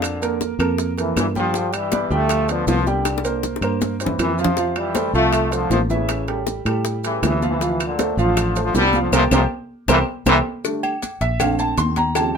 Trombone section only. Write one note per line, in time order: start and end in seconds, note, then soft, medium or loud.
0.00 0.42 A#2 medium
0.00 0.41 D3 medium
0.99 1.16 C3 medium
0.99 1.16 E3 medium
1.18 1.27 A#2 medium
1.18 1.26 E3 medium
1.36 1.72 D3 medium
1.36 1.71 F3 medium
1.74 2.11 E3 medium
1.74 2.11 G3 loud
2.12 2.48 F3 medium
2.12 2.49 A3 loud
2.49 2.68 D3 medium
2.49 2.68 F3 medium
2.69 2.86 D3 medium
2.69 2.86 F3 medium
2.87 3.44 A#2 medium
2.87 3.44 D3 medium
4.01 4.18 C3 medium
4.01 4.18 E3 medium
4.20 4.38 C3 medium
4.20 4.38 E3 medium
4.39 4.74 C3 medium
4.39 4.74 F3 medium
4.77 5.14 E3 medium
4.77 5.14 G3 medium
5.14 5.50 F3 medium
5.14 5.50 A3 medium
5.52 5.72 D3 medium
5.52 5.70 F3 medium
5.71 5.80 C3 medium
5.71 5.80 F3 medium
5.91 6.44 A2 medium
5.91 6.43 C#3 medium
7.05 7.22 C#3 medium
7.05 7.22 E3 medium
7.25 7.42 C#3 medium
7.25 7.42 E3 medium
7.49 7.84 C3 medium
7.49 7.84 E3 medium
7.86 8.16 A#2 medium
7.86 8.16 D3 medium
8.18 8.60 D3 medium
8.18 8.59 F3 medium
8.63 8.75 D3 medium
8.63 8.74 F3 medium
8.76 8.99 D3 medium
8.76 8.99 G3 loud
9.01 9.13 D3 medium
9.01 9.13 F3 medium
9.14 9.23 A#2 medium
9.14 9.23 C3 medium
9.14 9.23 F3 medium
9.33 9.42 A#2 medium
9.33 9.42 C3 loud
9.33 9.42 F3 medium
9.89 9.98 A#2 medium
9.89 9.98 C3 medium
9.89 9.98 E3 loud
10.27 10.36 A#2 loud
10.27 10.36 C3 medium
10.27 10.36 E3 loud